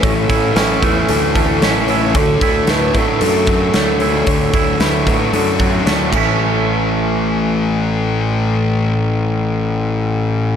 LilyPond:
<<
  \new Staff \with { instrumentName = "Clean electric guitar" } { \time 4/4 \key a \major \tempo 4 = 113 cis''4 b'4 a'4 cis''4 | cis''4 b'4 a'4 cis''4 | cis''4 b'4 a'4 cis''8 a'8~ | a'8 r2. r8 |
r1 | }
  \new Staff \with { instrumentName = "Soft synth lead" } { \time 4/4 \key a \major a'2.~ a'8 r8 | a'8 a'8 b'8 a'2~ a'8~ | a'2. r4 | r1 |
r1 | }
  \new Staff \with { instrumentName = "Clean electric guitar" } { \time 4/4 \key a \major <a, e a cis' e'>8 e'8 cis'8 a8 e8 a8 cis'8 e'8 | d8 e'8 a8 fis8 d8 fis8 a8 e'8 | d8 e'8 a8 fis8 d8 fis8 a8 <a, e a cis' e'>8~ | <a, e a cis' e'>1~ |
<a, e a cis' e'>1 | }
  \new Staff \with { instrumentName = "Distorted electric guitar" } { \time 4/4 \key a \major <a, e a cis'>8 a8 e'8 cis'8 a8 e8 cis'8 a8 | d8 a8 e'8 d'8 a8 fis8 d'8 a8 | d8 a8 e'8 d'8 a8 fis8 d'8 <a, e a>8~ | <a, e a>1~ |
<a, e a>1 | }
  \new Staff \with { instrumentName = "Fingered electric bass" } { \clef bass \time 4/4 \key a \major a,,8 a,,8 a,,8 e,8 d,4 a,,4 | d,8 d,8 d,8 a,8 fis,4 d,4 | d,8 d,8 d,8 a,8 fis,4 d,8 a,,8~ | a,,1~ |
a,,1 | }
  \new DrumStaff \with { instrumentName = "Drums" } \drummode { \time 4/4 <hho bd>8 <hho bd>8 <hho sn>8 <hho bd>8 hho8 <hho bd>8 <hho sn>8 hho8 | <hho bd>8 <hho bd>8 <hho sn>8 <hho bd>8 hho8 <hho bd>8 <hho sn>8 hho8 | <hho bd>8 <hho bd>8 <hho sn>8 <hho bd>8 hho8 <hho bd>8 <hho sn>8 <cymc bd>8 | r4 r4 r4 r4 |
r4 r4 r4 r4 | }
>>